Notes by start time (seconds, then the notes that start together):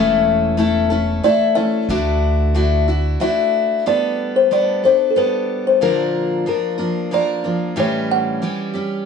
Already playing: E1 E2 E3 A3 C#4 E4 A4 E5
0.57 A3 C#4 E4 A4
0.90 A3 C#4 E4 A4
1.24 A3 E4 A4 D5
1.55 A3 C#4 E4 A4 E5
1.89 D2 D3 A3 D4 E4 F#4
2.54 A3 D4 E4 F#4
2.88 D4 E4 F#4
3.20 A3 D4 E4 F#4 E5
3.86 G3 B3 D4 A4 D5
4.36 C5
4.51 G3 B3 D4 A4 D5
4.83 B3 D4 A4 C5
5.11 A4
5.16 G3 B3 D4 A4 B4
5.67 C5
5.81 A#2 D3 F3 A#3 D4 A#4
6.46 F3 A#3 D4 A#4
6.78 F3 A#3 D4 A#4
7.11 F3 A#3 D4 A#4 D5
7.44 F3 A#3 D4 A#4
7.76 A2 E3 G3 C#4 G4 C#5
8.11 F#5
8.42 E3 G3 C#4 G4
8.74 G3 C#4 G4